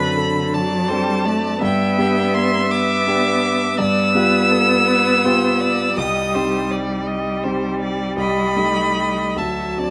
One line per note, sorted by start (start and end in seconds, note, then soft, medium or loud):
0.00 1.65 F#2 medium
0.00 0.55 D3 medium
0.00 0.85 C4 medium
0.00 0.86 D4 medium
0.00 0.86 A4 medium
0.00 0.19 B4 medium
0.00 0.56 B5 loud
0.17 0.55 A4 medium
0.54 0.91 F#3 medium
0.54 0.90 D5 medium
0.54 1.62 A5 medium
0.89 1.26 G3 medium
0.89 1.58 C4 medium
0.89 1.58 D4 medium
0.89 1.59 A4 medium
0.89 1.26 C5 medium
1.25 1.60 A3 medium
1.25 1.61 D5 medium
1.61 1.96 G2 medium
1.61 2.68 B3 medium
1.61 3.79 E5 medium
1.61 2.36 G5 medium
1.98 3.03 B3 medium
1.98 3.03 D4 medium
1.98 3.03 G4 medium
2.34 2.72 C6 medium
2.70 3.76 B3 medium
2.70 3.78 D6 medium
3.07 3.75 B3 medium
3.07 3.75 D4 medium
3.07 3.75 G4 medium
3.78 4.14 G2 medium
3.78 5.93 B3 medium
3.78 4.14 D5 medium
3.78 5.93 E6 loud
4.15 5.20 B3 medium
4.15 5.20 F4 medium
4.15 5.20 G4 medium
4.15 4.53 B4 medium
4.51 4.90 A4 medium
4.88 5.26 B4 medium
5.24 5.93 B3 medium
5.24 5.94 F4 medium
5.24 5.94 G4 medium
5.24 5.62 C5 medium
5.60 5.99 D5 medium
5.97 6.33 C2 medium
5.97 9.39 G3 medium
5.97 6.36 D#5 medium
5.97 6.70 D#6 medium
6.34 7.39 C4 medium
6.34 7.39 D#4 medium
6.34 7.39 G4 medium
6.34 6.72 C5 medium
6.71 7.08 D5 medium
7.07 7.45 D#5 medium
7.44 8.14 C4 soft
7.44 8.14 D#4 soft
7.44 8.14 G4 medium
7.44 7.80 C5 medium
7.80 8.17 D5 medium
8.17 8.55 C2 medium
8.17 9.39 D#5 medium
8.17 9.39 B5 loud
8.56 9.32 A3 soft
8.56 9.32 D#4 soft
8.56 9.32 G4 soft
9.37 9.76 D2 medium
9.37 9.90 F#3 medium
9.37 9.80 E5 medium
9.37 9.90 A5 medium
9.77 9.90 C4 soft
9.77 9.90 D4 soft
9.77 9.90 F#4 soft
9.77 9.90 D5 medium